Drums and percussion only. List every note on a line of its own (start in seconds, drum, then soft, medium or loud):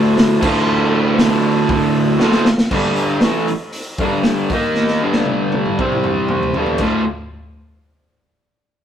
0.18 snare loud
0.18 open hi-hat medium
0.42 kick loud
0.42 crash loud
1.19 snare loud
1.19 open hi-hat medium
1.69 kick loud
1.69 open hi-hat medium
2.20 snare medium
2.32 snare medium
2.45 snare loud
2.58 snare loud
2.71 kick loud
2.71 crash loud
2.83 snare soft
2.96 open hi-hat medium
3.21 snare loud
3.21 open hi-hat medium
3.48 open hi-hat medium
3.72 open hi-hat medium
3.98 kick loud
3.98 open hi-hat medium
4.23 snare loud
4.23 open hi-hat medium
4.50 kick loud
4.50 open hi-hat medium
4.75 snare medium
4.87 snare medium
5.13 snare medium
5.26 high tom medium
5.52 high tom medium
5.66 mid tom medium
5.79 kick loud
5.92 mid tom medium
6.04 mid tom medium
6.29 mid tom medium
6.43 floor tom medium
6.54 floor tom loud
6.66 floor tom medium
6.78 kick loud
6.78 crash medium